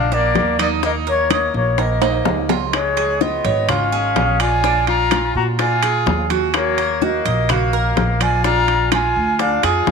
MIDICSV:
0, 0, Header, 1, 6, 480
1, 0, Start_track
1, 0, Key_signature, -6, "minor"
1, 0, Tempo, 475813
1, 837, Time_signature, 4, 2, 24, 8
1, 9997, End_track
2, 0, Start_track
2, 0, Title_t, "Flute"
2, 0, Program_c, 0, 73
2, 0, Note_on_c, 0, 77, 100
2, 139, Note_on_c, 0, 74, 95
2, 154, Note_off_c, 0, 77, 0
2, 608, Note_off_c, 0, 74, 0
2, 623, Note_on_c, 0, 74, 91
2, 683, Note_off_c, 0, 74, 0
2, 859, Note_on_c, 0, 75, 93
2, 920, Note_off_c, 0, 75, 0
2, 1096, Note_on_c, 0, 73, 98
2, 1310, Note_off_c, 0, 73, 0
2, 1336, Note_on_c, 0, 73, 84
2, 1550, Note_off_c, 0, 73, 0
2, 1576, Note_on_c, 0, 73, 84
2, 1821, Note_on_c, 0, 75, 78
2, 1836, Note_off_c, 0, 73, 0
2, 2529, Note_off_c, 0, 75, 0
2, 2769, Note_on_c, 0, 73, 84
2, 3244, Note_on_c, 0, 75, 85
2, 3259, Note_off_c, 0, 73, 0
2, 3729, Note_on_c, 0, 77, 89
2, 3744, Note_off_c, 0, 75, 0
2, 4446, Note_on_c, 0, 80, 107
2, 4461, Note_off_c, 0, 77, 0
2, 4921, Note_off_c, 0, 80, 0
2, 4929, Note_on_c, 0, 82, 117
2, 5370, Note_off_c, 0, 82, 0
2, 5413, Note_on_c, 0, 82, 100
2, 5474, Note_off_c, 0, 82, 0
2, 5656, Note_on_c, 0, 80, 88
2, 6326, Note_off_c, 0, 80, 0
2, 6621, Note_on_c, 0, 73, 86
2, 7097, Note_on_c, 0, 75, 80
2, 7112, Note_off_c, 0, 73, 0
2, 7574, Note_on_c, 0, 77, 93
2, 7589, Note_off_c, 0, 75, 0
2, 8298, Note_on_c, 0, 80, 104
2, 8313, Note_off_c, 0, 77, 0
2, 8525, Note_off_c, 0, 80, 0
2, 8531, Note_on_c, 0, 82, 114
2, 8972, Note_off_c, 0, 82, 0
2, 9018, Note_on_c, 0, 80, 106
2, 9492, Note_on_c, 0, 77, 88
2, 9507, Note_off_c, 0, 80, 0
2, 9731, Note_on_c, 0, 80, 84
2, 9746, Note_off_c, 0, 77, 0
2, 9997, Note_off_c, 0, 80, 0
2, 9997, End_track
3, 0, Start_track
3, 0, Title_t, "Cuban tres"
3, 0, Program_c, 1, 25
3, 0, Note_on_c, 1, 58, 89
3, 102, Note_off_c, 1, 58, 0
3, 118, Note_on_c, 1, 62, 73
3, 583, Note_off_c, 1, 62, 0
3, 599, Note_on_c, 1, 63, 90
3, 827, Note_off_c, 1, 63, 0
3, 839, Note_on_c, 1, 63, 75
3, 1071, Note_off_c, 1, 63, 0
3, 1079, Note_on_c, 1, 70, 71
3, 1311, Note_off_c, 1, 70, 0
3, 1315, Note_on_c, 1, 75, 67
3, 1782, Note_off_c, 1, 75, 0
3, 1800, Note_on_c, 1, 70, 61
3, 2032, Note_off_c, 1, 70, 0
3, 2036, Note_on_c, 1, 63, 83
3, 2502, Note_off_c, 1, 63, 0
3, 2520, Note_on_c, 1, 65, 76
3, 2752, Note_off_c, 1, 65, 0
3, 2994, Note_on_c, 1, 68, 79
3, 3229, Note_off_c, 1, 68, 0
3, 3236, Note_on_c, 1, 65, 69
3, 3469, Note_off_c, 1, 65, 0
3, 3478, Note_on_c, 1, 73, 75
3, 3710, Note_off_c, 1, 73, 0
3, 3718, Note_on_c, 1, 65, 65
3, 3951, Note_off_c, 1, 65, 0
3, 3959, Note_on_c, 1, 68, 72
3, 4423, Note_off_c, 1, 68, 0
3, 4440, Note_on_c, 1, 74, 74
3, 4671, Note_off_c, 1, 74, 0
3, 4681, Note_on_c, 1, 62, 81
3, 5145, Note_off_c, 1, 62, 0
3, 5159, Note_on_c, 1, 65, 68
3, 5624, Note_off_c, 1, 65, 0
3, 5639, Note_on_c, 1, 74, 69
3, 5871, Note_off_c, 1, 74, 0
3, 5881, Note_on_c, 1, 68, 82
3, 6345, Note_off_c, 1, 68, 0
3, 6358, Note_on_c, 1, 66, 78
3, 6823, Note_off_c, 1, 66, 0
3, 6840, Note_on_c, 1, 70, 74
3, 7071, Note_off_c, 1, 70, 0
3, 7079, Note_on_c, 1, 66, 61
3, 7311, Note_off_c, 1, 66, 0
3, 7319, Note_on_c, 1, 75, 80
3, 7551, Note_off_c, 1, 75, 0
3, 7563, Note_on_c, 1, 66, 64
3, 7793, Note_off_c, 1, 66, 0
3, 7800, Note_on_c, 1, 70, 78
3, 8264, Note_off_c, 1, 70, 0
3, 8282, Note_on_c, 1, 74, 76
3, 8513, Note_off_c, 1, 74, 0
3, 8518, Note_on_c, 1, 62, 79
3, 8984, Note_off_c, 1, 62, 0
3, 9001, Note_on_c, 1, 65, 65
3, 9465, Note_off_c, 1, 65, 0
3, 9479, Note_on_c, 1, 74, 73
3, 9712, Note_off_c, 1, 74, 0
3, 9718, Note_on_c, 1, 68, 81
3, 9997, Note_off_c, 1, 68, 0
3, 9997, End_track
4, 0, Start_track
4, 0, Title_t, "Trumpet"
4, 0, Program_c, 2, 56
4, 0, Note_on_c, 2, 62, 88
4, 131, Note_on_c, 2, 58, 88
4, 146, Note_off_c, 2, 62, 0
4, 600, Note_off_c, 2, 58, 0
4, 606, Note_on_c, 2, 58, 68
4, 712, Note_off_c, 2, 58, 0
4, 851, Note_on_c, 2, 58, 79
4, 956, Note_off_c, 2, 58, 0
4, 1090, Note_on_c, 2, 58, 66
4, 1307, Note_off_c, 2, 58, 0
4, 1333, Note_on_c, 2, 58, 64
4, 1549, Note_off_c, 2, 58, 0
4, 1568, Note_on_c, 2, 58, 63
4, 1808, Note_off_c, 2, 58, 0
4, 1808, Note_on_c, 2, 58, 68
4, 2523, Note_off_c, 2, 58, 0
4, 2761, Note_on_c, 2, 56, 69
4, 3240, Note_on_c, 2, 59, 63
4, 3255, Note_off_c, 2, 56, 0
4, 3727, Note_on_c, 2, 61, 78
4, 3742, Note_off_c, 2, 59, 0
4, 4444, Note_on_c, 2, 65, 94
4, 4459, Note_off_c, 2, 61, 0
4, 4913, Note_off_c, 2, 65, 0
4, 4920, Note_on_c, 2, 65, 89
4, 5365, Note_off_c, 2, 65, 0
4, 5407, Note_on_c, 2, 66, 68
4, 5513, Note_off_c, 2, 66, 0
4, 5647, Note_on_c, 2, 65, 82
4, 6322, Note_off_c, 2, 65, 0
4, 6611, Note_on_c, 2, 58, 76
4, 7092, Note_off_c, 2, 58, 0
4, 7092, Note_on_c, 2, 58, 69
4, 7574, Note_off_c, 2, 58, 0
4, 7574, Note_on_c, 2, 58, 72
4, 8285, Note_on_c, 2, 65, 82
4, 8300, Note_off_c, 2, 58, 0
4, 8521, Note_off_c, 2, 65, 0
4, 8528, Note_on_c, 2, 65, 98
4, 8970, Note_off_c, 2, 65, 0
4, 9005, Note_on_c, 2, 65, 80
4, 9479, Note_on_c, 2, 62, 78
4, 9494, Note_off_c, 2, 65, 0
4, 9725, Note_on_c, 2, 65, 84
4, 9741, Note_off_c, 2, 62, 0
4, 9997, Note_off_c, 2, 65, 0
4, 9997, End_track
5, 0, Start_track
5, 0, Title_t, "Upright bass"
5, 0, Program_c, 3, 32
5, 0, Note_on_c, 3, 34, 92
5, 316, Note_off_c, 3, 34, 0
5, 357, Note_on_c, 3, 39, 100
5, 1493, Note_off_c, 3, 39, 0
5, 1555, Note_on_c, 3, 34, 105
5, 2236, Note_off_c, 3, 34, 0
5, 2275, Note_on_c, 3, 37, 92
5, 3412, Note_off_c, 3, 37, 0
5, 3477, Note_on_c, 3, 32, 100
5, 4157, Note_off_c, 3, 32, 0
5, 4198, Note_on_c, 3, 34, 82
5, 5333, Note_off_c, 3, 34, 0
5, 5395, Note_on_c, 3, 46, 95
5, 6076, Note_off_c, 3, 46, 0
5, 6117, Note_on_c, 3, 39, 90
5, 7253, Note_off_c, 3, 39, 0
5, 7321, Note_on_c, 3, 34, 106
5, 7999, Note_off_c, 3, 34, 0
5, 8038, Note_on_c, 3, 34, 98
5, 9174, Note_off_c, 3, 34, 0
5, 9242, Note_on_c, 3, 38, 95
5, 9687, Note_off_c, 3, 38, 0
5, 9717, Note_on_c, 3, 41, 73
5, 9941, Note_off_c, 3, 41, 0
5, 9956, Note_on_c, 3, 42, 91
5, 9997, Note_off_c, 3, 42, 0
5, 9997, End_track
6, 0, Start_track
6, 0, Title_t, "Drums"
6, 116, Note_on_c, 9, 63, 36
6, 120, Note_on_c, 9, 60, 31
6, 217, Note_off_c, 9, 63, 0
6, 221, Note_off_c, 9, 60, 0
6, 355, Note_on_c, 9, 63, 86
6, 356, Note_on_c, 9, 60, 34
6, 356, Note_on_c, 9, 61, 87
6, 358, Note_on_c, 9, 65, 60
6, 456, Note_off_c, 9, 63, 0
6, 457, Note_off_c, 9, 60, 0
6, 457, Note_off_c, 9, 61, 0
6, 459, Note_off_c, 9, 65, 0
6, 595, Note_on_c, 9, 63, 69
6, 596, Note_on_c, 9, 75, 66
6, 597, Note_on_c, 9, 60, 33
6, 599, Note_on_c, 9, 65, 91
6, 696, Note_off_c, 9, 63, 0
6, 696, Note_off_c, 9, 75, 0
6, 697, Note_off_c, 9, 60, 0
6, 700, Note_off_c, 9, 65, 0
6, 834, Note_on_c, 9, 63, 33
6, 837, Note_on_c, 9, 60, 64
6, 935, Note_off_c, 9, 63, 0
6, 938, Note_off_c, 9, 60, 0
6, 1073, Note_on_c, 9, 63, 35
6, 1173, Note_off_c, 9, 63, 0
6, 1313, Note_on_c, 9, 63, 61
6, 1317, Note_on_c, 9, 60, 55
6, 1317, Note_on_c, 9, 65, 102
6, 1317, Note_on_c, 9, 75, 68
6, 1414, Note_off_c, 9, 63, 0
6, 1418, Note_off_c, 9, 60, 0
6, 1418, Note_off_c, 9, 65, 0
6, 1418, Note_off_c, 9, 75, 0
6, 1558, Note_on_c, 9, 60, 31
6, 1659, Note_off_c, 9, 60, 0
6, 1794, Note_on_c, 9, 65, 66
6, 1796, Note_on_c, 9, 60, 64
6, 1796, Note_on_c, 9, 63, 38
6, 1895, Note_off_c, 9, 65, 0
6, 1897, Note_off_c, 9, 60, 0
6, 1897, Note_off_c, 9, 63, 0
6, 2034, Note_on_c, 9, 60, 73
6, 2034, Note_on_c, 9, 65, 96
6, 2036, Note_on_c, 9, 63, 37
6, 2038, Note_on_c, 9, 75, 63
6, 2135, Note_off_c, 9, 60, 0
6, 2135, Note_off_c, 9, 65, 0
6, 2137, Note_off_c, 9, 63, 0
6, 2139, Note_off_c, 9, 75, 0
6, 2273, Note_on_c, 9, 66, 89
6, 2274, Note_on_c, 9, 61, 97
6, 2274, Note_on_c, 9, 63, 78
6, 2374, Note_off_c, 9, 66, 0
6, 2375, Note_off_c, 9, 61, 0
6, 2375, Note_off_c, 9, 63, 0
6, 2515, Note_on_c, 9, 66, 89
6, 2516, Note_on_c, 9, 61, 92
6, 2516, Note_on_c, 9, 63, 69
6, 2616, Note_off_c, 9, 66, 0
6, 2617, Note_off_c, 9, 61, 0
6, 2617, Note_off_c, 9, 63, 0
6, 2757, Note_on_c, 9, 65, 101
6, 2759, Note_on_c, 9, 60, 76
6, 2759, Note_on_c, 9, 63, 31
6, 2759, Note_on_c, 9, 75, 62
6, 2858, Note_off_c, 9, 65, 0
6, 2860, Note_off_c, 9, 60, 0
6, 2860, Note_off_c, 9, 63, 0
6, 2860, Note_off_c, 9, 75, 0
6, 2998, Note_on_c, 9, 63, 33
6, 2998, Note_on_c, 9, 65, 66
6, 3098, Note_off_c, 9, 63, 0
6, 3099, Note_off_c, 9, 65, 0
6, 3237, Note_on_c, 9, 63, 60
6, 3238, Note_on_c, 9, 60, 56
6, 3338, Note_off_c, 9, 63, 0
6, 3339, Note_off_c, 9, 60, 0
6, 3476, Note_on_c, 9, 65, 65
6, 3477, Note_on_c, 9, 63, 92
6, 3577, Note_off_c, 9, 65, 0
6, 3578, Note_off_c, 9, 63, 0
6, 3718, Note_on_c, 9, 63, 37
6, 3718, Note_on_c, 9, 64, 88
6, 3718, Note_on_c, 9, 65, 81
6, 3719, Note_on_c, 9, 75, 72
6, 3724, Note_on_c, 9, 60, 68
6, 3819, Note_off_c, 9, 63, 0
6, 3819, Note_off_c, 9, 64, 0
6, 3819, Note_off_c, 9, 65, 0
6, 3819, Note_off_c, 9, 75, 0
6, 3824, Note_off_c, 9, 60, 0
6, 3960, Note_on_c, 9, 63, 34
6, 4061, Note_off_c, 9, 63, 0
6, 4197, Note_on_c, 9, 60, 60
6, 4197, Note_on_c, 9, 61, 78
6, 4197, Note_on_c, 9, 63, 86
6, 4200, Note_on_c, 9, 65, 62
6, 4200, Note_on_c, 9, 66, 66
6, 4297, Note_off_c, 9, 63, 0
6, 4298, Note_off_c, 9, 60, 0
6, 4298, Note_off_c, 9, 61, 0
6, 4301, Note_off_c, 9, 65, 0
6, 4301, Note_off_c, 9, 66, 0
6, 4437, Note_on_c, 9, 65, 87
6, 4437, Note_on_c, 9, 75, 63
6, 4538, Note_off_c, 9, 65, 0
6, 4538, Note_off_c, 9, 75, 0
6, 4679, Note_on_c, 9, 60, 68
6, 4680, Note_on_c, 9, 63, 33
6, 4780, Note_off_c, 9, 60, 0
6, 4781, Note_off_c, 9, 63, 0
6, 4916, Note_on_c, 9, 63, 38
6, 4916, Note_on_c, 9, 65, 68
6, 4921, Note_on_c, 9, 60, 32
6, 5017, Note_off_c, 9, 63, 0
6, 5017, Note_off_c, 9, 65, 0
6, 5022, Note_off_c, 9, 60, 0
6, 5155, Note_on_c, 9, 65, 97
6, 5158, Note_on_c, 9, 63, 59
6, 5160, Note_on_c, 9, 75, 66
6, 5162, Note_on_c, 9, 60, 55
6, 5256, Note_off_c, 9, 65, 0
6, 5259, Note_off_c, 9, 63, 0
6, 5261, Note_off_c, 9, 75, 0
6, 5263, Note_off_c, 9, 60, 0
6, 5399, Note_on_c, 9, 63, 36
6, 5500, Note_off_c, 9, 63, 0
6, 5637, Note_on_c, 9, 63, 38
6, 5637, Note_on_c, 9, 65, 67
6, 5642, Note_on_c, 9, 60, 64
6, 5738, Note_off_c, 9, 63, 0
6, 5738, Note_off_c, 9, 65, 0
6, 5742, Note_off_c, 9, 60, 0
6, 5876, Note_on_c, 9, 65, 101
6, 5878, Note_on_c, 9, 63, 38
6, 5879, Note_on_c, 9, 75, 62
6, 5883, Note_on_c, 9, 60, 34
6, 5977, Note_off_c, 9, 65, 0
6, 5979, Note_off_c, 9, 63, 0
6, 5979, Note_off_c, 9, 75, 0
6, 5984, Note_off_c, 9, 60, 0
6, 6117, Note_on_c, 9, 63, 84
6, 6118, Note_on_c, 9, 66, 70
6, 6123, Note_on_c, 9, 60, 68
6, 6123, Note_on_c, 9, 61, 75
6, 6218, Note_off_c, 9, 63, 0
6, 6219, Note_off_c, 9, 66, 0
6, 6224, Note_off_c, 9, 60, 0
6, 6224, Note_off_c, 9, 61, 0
6, 6356, Note_on_c, 9, 63, 74
6, 6357, Note_on_c, 9, 65, 69
6, 6364, Note_on_c, 9, 60, 34
6, 6457, Note_off_c, 9, 63, 0
6, 6458, Note_off_c, 9, 65, 0
6, 6465, Note_off_c, 9, 60, 0
6, 6595, Note_on_c, 9, 65, 98
6, 6596, Note_on_c, 9, 63, 33
6, 6598, Note_on_c, 9, 75, 68
6, 6600, Note_on_c, 9, 60, 73
6, 6696, Note_off_c, 9, 65, 0
6, 6697, Note_off_c, 9, 63, 0
6, 6699, Note_off_c, 9, 75, 0
6, 6701, Note_off_c, 9, 60, 0
6, 6839, Note_on_c, 9, 65, 73
6, 6840, Note_on_c, 9, 63, 33
6, 6939, Note_off_c, 9, 65, 0
6, 6940, Note_off_c, 9, 63, 0
6, 7077, Note_on_c, 9, 63, 59
6, 7083, Note_on_c, 9, 60, 59
6, 7178, Note_off_c, 9, 63, 0
6, 7184, Note_off_c, 9, 60, 0
6, 7318, Note_on_c, 9, 63, 89
6, 7319, Note_on_c, 9, 65, 63
6, 7419, Note_off_c, 9, 63, 0
6, 7420, Note_off_c, 9, 65, 0
6, 7556, Note_on_c, 9, 65, 85
6, 7561, Note_on_c, 9, 75, 69
6, 7562, Note_on_c, 9, 63, 37
6, 7562, Note_on_c, 9, 64, 82
6, 7563, Note_on_c, 9, 60, 70
6, 7657, Note_off_c, 9, 65, 0
6, 7662, Note_off_c, 9, 75, 0
6, 7663, Note_off_c, 9, 63, 0
6, 7663, Note_off_c, 9, 64, 0
6, 7664, Note_off_c, 9, 60, 0
6, 7801, Note_on_c, 9, 63, 33
6, 7901, Note_off_c, 9, 63, 0
6, 8040, Note_on_c, 9, 60, 68
6, 8040, Note_on_c, 9, 61, 82
6, 8040, Note_on_c, 9, 63, 87
6, 8040, Note_on_c, 9, 65, 66
6, 8141, Note_off_c, 9, 60, 0
6, 8141, Note_off_c, 9, 61, 0
6, 8141, Note_off_c, 9, 63, 0
6, 8141, Note_off_c, 9, 65, 0
6, 8277, Note_on_c, 9, 75, 61
6, 8279, Note_on_c, 9, 63, 64
6, 8280, Note_on_c, 9, 65, 93
6, 8378, Note_off_c, 9, 75, 0
6, 8379, Note_off_c, 9, 63, 0
6, 8381, Note_off_c, 9, 65, 0
6, 8518, Note_on_c, 9, 60, 67
6, 8519, Note_on_c, 9, 63, 34
6, 8619, Note_off_c, 9, 60, 0
6, 8619, Note_off_c, 9, 63, 0
6, 8757, Note_on_c, 9, 60, 34
6, 8758, Note_on_c, 9, 65, 70
6, 8760, Note_on_c, 9, 63, 37
6, 8858, Note_off_c, 9, 60, 0
6, 8859, Note_off_c, 9, 65, 0
6, 8860, Note_off_c, 9, 63, 0
6, 8996, Note_on_c, 9, 63, 61
6, 8996, Note_on_c, 9, 65, 99
6, 8997, Note_on_c, 9, 60, 55
6, 8998, Note_on_c, 9, 75, 65
6, 9097, Note_off_c, 9, 63, 0
6, 9097, Note_off_c, 9, 65, 0
6, 9098, Note_off_c, 9, 60, 0
6, 9099, Note_off_c, 9, 75, 0
6, 9237, Note_on_c, 9, 63, 31
6, 9338, Note_off_c, 9, 63, 0
6, 9475, Note_on_c, 9, 65, 58
6, 9476, Note_on_c, 9, 63, 39
6, 9477, Note_on_c, 9, 60, 64
6, 9576, Note_off_c, 9, 65, 0
6, 9577, Note_off_c, 9, 63, 0
6, 9578, Note_off_c, 9, 60, 0
6, 9717, Note_on_c, 9, 63, 34
6, 9718, Note_on_c, 9, 65, 93
6, 9720, Note_on_c, 9, 75, 65
6, 9723, Note_on_c, 9, 60, 29
6, 9818, Note_off_c, 9, 63, 0
6, 9819, Note_off_c, 9, 65, 0
6, 9821, Note_off_c, 9, 75, 0
6, 9823, Note_off_c, 9, 60, 0
6, 9957, Note_on_c, 9, 63, 81
6, 9958, Note_on_c, 9, 66, 71
6, 9959, Note_on_c, 9, 60, 67
6, 9959, Note_on_c, 9, 61, 86
6, 9997, Note_off_c, 9, 60, 0
6, 9997, Note_off_c, 9, 61, 0
6, 9997, Note_off_c, 9, 63, 0
6, 9997, Note_off_c, 9, 66, 0
6, 9997, End_track
0, 0, End_of_file